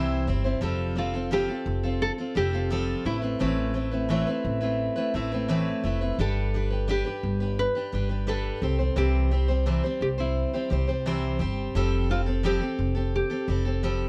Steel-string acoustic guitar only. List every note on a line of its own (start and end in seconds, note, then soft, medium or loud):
0.00 0.28 C3 medium
0.00 0.28 E3 medium
0.00 0.26 G3 medium
0.00 0.27 C4 medium
0.00 0.28 E4 medium
0.00 0.28 C5 medium
0.27 0.45 G3 medium
0.27 0.45 C4 medium
0.27 0.44 E4 medium
0.27 0.43 C5 medium
0.44 0.61 G3 soft
0.44 0.61 C4 soft
0.44 0.62 E4 soft
0.44 0.62 C5 soft
0.61 0.97 F3 medium
0.61 0.94 G3 medium
0.61 0.95 C4 medium
0.61 0.97 F4 medium
0.61 0.97 A4 medium
0.95 1.14 G3 soft
0.95 1.14 C4 medium
0.95 1.14 F4 medium
0.95 1.12 A4 medium
1.14 1.31 C4 soft
1.14 1.31 F4 soft
1.14 1.31 A4 soft
1.31 1.49 F3 medium
1.31 1.49 G3 medium
1.31 1.50 C4 medium
1.31 1.49 F4 medium
1.31 1.47 A4 medium
1.48 1.84 C4 soft
1.48 1.83 F4 soft
1.48 1.82 A4 medium
1.83 2.19 C4 soft
1.83 2.18 F4 soft
1.83 2.17 A4 soft
2.18 2.35 C4 soft
2.18 2.36 F4 soft
2.18 2.36 A4 medium
2.35 2.53 G3 medium
2.35 2.54 C4 medium
2.35 2.53 F4 medium
2.35 2.52 A4 medium
2.53 2.70 C4 soft
2.53 2.70 F4 soft
2.53 2.71 A4 soft
2.70 3.05 F3 medium
2.70 3.05 G3 medium
2.70 3.04 C4 medium
2.70 3.06 F4 medium
2.70 3.06 A4 medium
3.05 3.23 A3 medium
3.05 3.22 C4 medium
3.05 3.21 E4 medium
3.05 3.21 B4 medium
3.22 3.39 A3 soft
3.22 3.40 C4 soft
3.22 3.40 E4 soft
3.22 3.40 B4 soft
3.39 3.75 A2 medium
3.39 3.75 E3 medium
3.39 3.73 A3 medium
3.39 3.73 C4 medium
3.39 3.74 E4 medium
3.39 3.75 B4 medium
3.74 3.92 A3 soft
3.74 3.92 C4 medium
3.74 3.91 E4 medium
3.74 3.90 B4 medium
3.91 4.09 A3 soft
3.91 4.09 C4 soft
3.91 4.09 E4 soft
3.91 4.09 B4 soft
4.09 4.27 A2 medium
4.09 4.27 E3 medium
4.09 4.27 A3 medium
4.09 4.27 C4 medium
4.09 4.26 E4 medium
4.09 4.26 B4 medium
4.27 4.62 A3 soft
4.27 4.62 C4 soft
4.27 4.60 E4 soft
4.27 4.59 B4 medium
4.61 4.97 A3 soft
4.61 4.96 C4 soft
4.61 4.96 E4 medium
4.61 4.95 B4 medium
4.96 5.13 A3 soft
4.96 5.14 C4 soft
4.96 5.14 E4 soft
4.96 5.14 B4 medium
5.14 5.32 A3 medium
5.14 5.32 C4 medium
5.14 5.32 E4 medium
5.14 5.31 B4 medium
5.32 5.48 A3 soft
5.32 5.48 C4 soft
5.32 5.49 E4 soft
5.32 5.49 B4 medium
5.48 5.83 A2 medium
5.48 5.84 E3 medium
5.48 5.82 A3 medium
5.48 5.83 C4 medium
5.48 5.84 E4 medium
5.48 5.85 B4 medium
5.84 6.01 A3 medium
5.84 6.01 C4 medium
5.84 6.00 E4 medium
5.84 6.00 B4 medium
6.01 6.19 A3 soft
6.01 6.19 C4 soft
6.01 6.19 E4 soft
6.01 6.18 B4 soft
6.19 6.53 G3 medium
6.19 6.54 D4 medium
6.19 6.54 G4 medium
6.19 6.54 B4 medium
6.54 6.71 G3 medium
6.54 6.71 D4 medium
6.54 6.71 G4 medium
6.54 6.69 B4 medium
6.70 6.87 D4 soft
6.70 6.88 G4 soft
6.70 6.88 B4 soft
6.88 7.05 G3 medium
6.88 7.06 D4 medium
6.88 7.05 G4 medium
6.88 7.03 B4 medium
7.05 7.41 D4 soft
7.05 7.40 G4 soft
7.05 7.39 B4 medium
7.40 7.76 D4 soft
7.40 7.75 G4 soft
7.40 7.74 B4 soft
7.75 7.92 D4 soft
7.75 7.93 G4 soft
7.75 7.92 B4 soft
7.92 8.10 G3 medium
7.92 8.10 D4 medium
7.92 8.10 G4 medium
7.92 8.08 B4 medium
8.09 8.26 D4 soft
8.09 8.27 G4 soft
8.09 8.27 B4 soft
8.27 8.60 G3 medium
8.27 8.62 D4 medium
8.27 8.62 G4 medium
8.27 8.62 B4 medium
8.62 8.79 G3 medium
8.62 8.79 C4 medium
8.62 8.78 G4 medium
8.62 8.77 C5 medium
8.79 8.95 G3 soft
8.79 8.96 C4 soft
8.79 8.96 G4 soft
8.79 8.96 C5 soft
8.96 9.31 C3 medium
8.96 9.31 E3 medium
8.96 9.30 G3 medium
8.96 9.31 C4 medium
8.96 9.31 G4 medium
8.96 9.32 C5 medium
9.31 9.49 G3 medium
9.31 9.49 C4 medium
9.31 9.48 G4 medium
9.31 9.47 C5 medium
9.48 9.65 G3 soft
9.48 9.66 C4 soft
9.48 9.66 G4 soft
9.48 9.66 C5 soft
9.66 9.83 C3 medium
9.66 9.83 E3 medium
9.66 9.84 G3 medium
9.66 9.84 C4 medium
9.66 9.83 G4 medium
9.66 9.82 C5 medium
9.84 10.19 G3 soft
9.84 10.18 C4 soft
9.84 10.17 G4 soft
9.84 10.17 C5 soft
10.18 10.54 G3 soft
10.18 10.53 C4 soft
10.18 10.53 G4 soft
10.18 10.52 C5 medium
10.53 10.69 G3 soft
10.53 10.70 C4 soft
10.53 10.71 G4 soft
10.53 10.70 C5 soft
10.70 10.87 G3 medium
10.70 10.88 C4 medium
10.70 10.88 G4 medium
10.70 10.86 C5 medium
10.87 11.05 G3 soft
10.87 11.06 C4 soft
10.87 11.05 G4 soft
10.87 11.05 C5 soft
11.06 11.40 C3 medium
11.06 11.40 E3 medium
11.06 11.38 G3 medium
11.06 11.39 C4 medium
11.06 11.40 G4 medium
11.06 11.40 C5 medium
11.39 11.74 G3 medium
11.39 11.74 C4 medium
11.39 11.75 G4 medium
11.39 11.75 C5 medium
11.75 12.09 F3 medium
11.75 12.09 G3 medium
11.75 12.10 C4 medium
11.75 12.10 G4 medium
11.75 12.10 A4 medium
12.10 12.27 G3 soft
12.10 12.27 C4 medium
12.10 12.26 G4 medium
12.10 12.25 A4 medium
12.26 12.43 C4 soft
12.26 12.43 G4 soft
12.26 12.43 A4 soft
12.43 12.61 F3 medium
12.43 12.61 G3 medium
12.43 12.61 C4 medium
12.43 12.61 G4 medium
12.43 12.59 A4 medium
12.60 12.96 C4 soft
12.60 12.95 G4 soft
12.60 12.94 A4 soft
12.95 13.31 C4 soft
12.95 13.30 G4 soft
12.95 13.29 A4 soft
13.30 13.48 C4 soft
13.30 13.48 G4 soft
13.30 13.47 A4 medium
13.48 13.65 G3 medium
13.48 13.66 C4 medium
13.48 13.65 G4 medium
13.48 13.64 A4 medium
13.65 13.83 C4 soft
13.65 13.83 G4 soft
13.65 13.82 A4 soft
13.83 14.09 F3 medium
13.83 14.09 G3 medium
13.83 14.09 C4 medium
13.83 14.09 G4 medium
13.83 14.09 A4 medium